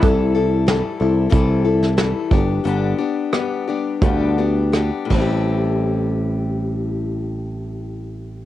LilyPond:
<<
  \new Staff \with { instrumentName = "Steel-string acoustic guitar" } { \time 4/4 \key a \minor \tempo 4 = 85 <c e g e' a'>8 <g e' a'>8 <e g e' a'>8 <g e' a'>8 <c e g e' a'>8 <g e' a'>8 <e g e' a'>8 <g b d' g'>8 | <g, d g b d' g'>8 <g b d' g'>8 <g b d' g'>8 <g b d' g'>8 <g, d g b d' g'>8 <g b d' g'>8 <g b d' g'>8 <a, g c' e' g'>8~ | <a, g c' e' g'>1 | }
  \new Staff \with { instrumentName = "Picked electric bass" } { \clef bass \time 4/4 \key a \minor c,4. c,8 c,4. g,,8 | g,,8 r4. d,4. a,,8~ | a,,1 | }
  \new DrumStaff \with { instrumentName = "Drums" } \drummode { \time 4/4 <hh bd>4 <hh sn>4 <hh bd>8. sn16 <hh sn>8 bd8 | hh4 <hh ss>4 <hh bd>4 <hh ss>8 <bd cymr>8 | r4 r4 r4 r4 | }
>>